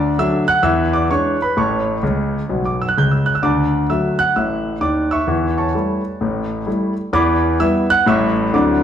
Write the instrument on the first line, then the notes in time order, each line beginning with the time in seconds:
grand piano
Already playing: D2 D3 D5 A5 D6
0.18 F#3 A3 D4 E5 E6
0.48 F#5 F#6
0.63 E2 E3 E5 E6
0.93 D5 D6
1.10 E3 G#3 D4 C#5 C#6
1.42 B4 B5
1.57 A1 A2 C#5 A5 C#6
2.03 C#2 C#3
2.49 B1 B2
2.65 D6
2.82 E6
2.89 F#6
2.97 C#2 C#3 G6
3.11 E6
3.26 F#6
3.35 E6
3.42 D2 D3 D5 A5 D6
3.89 F#3 A3 F#4 E5 E6
4.19 F#5 F#6
4.36 A1 A2 E5 E6
4.81 D#2 D#3 D5 D6
5.11 E5 C#6 E6
5.27 E2 E3
5.58 C#5 A5 C#6
5.74 G3 A3 E4
6.21 A1 A2
6.66 G3 A3 E4
7.13 E2 E3 D5 B5 D6
7.60 G3 B3 E4 E5 E6
7.90 F#5 F#6
8.06 A1 A2 G3 C#4 E4 E5 C#6 E6
8.53 D2 D3 F#3 C4 E4 D5 D6